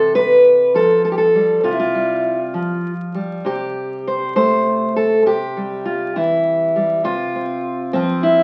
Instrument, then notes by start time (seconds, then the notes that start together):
steel-string acoustic guitar
Already playing: C3 A4
0.15 B4
0.74 F3 A4
1.05 A4
1.12 G4
1.18 A4
1.35 G3
1.63 C3 F4
1.71 E4
1.79 F4
1.95 G3
2.54 F3
3.15 G3
3.45 C3 G4
4.07 C5
4.36 A3 C5
4.96 A4
5.26 C3 G4
5.57 G3
5.85 F4
6.16 E3 E4
6.76 G3
7.04 C3 F4
7.35 C4
7.93 F3 C4
8.23 E4